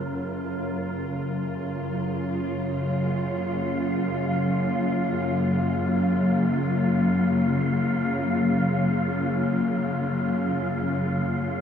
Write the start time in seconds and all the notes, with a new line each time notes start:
Already playing: F#2 C#3 A#3 F4 A#4
1.79 F#2 F5
2.30 A#3
2.45 C#3